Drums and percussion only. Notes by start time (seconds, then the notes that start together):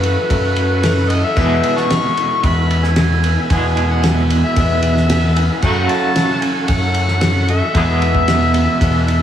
0.03 ride
0.30 kick, ride
0.56 ride
0.83 snare, ride
1.10 ride
1.37 kick, crash
1.63 ride
1.77 snare
1.90 snare, ride
2.17 ride
2.44 kick, ride
2.71 ride
2.84 snare
2.96 snare, ride
3.24 ride
3.50 kick, ride
3.77 ride
4.04 snare, ride
4.30 ride
4.56 kick, ride
4.83 ride
4.97 snare
5.10 snare, ride
5.36 ride
5.62 kick, crash
5.89 ride
6.16 snare, ride
6.42 ride
6.68 kick, ride
6.94 ride
7.08 snare
7.21 snare, ride
7.48 ride
7.75 kick, ride
8.02 ride
8.15 kick
8.28 snare, ride
8.54 ride
8.81 kick, ride
9.08 ride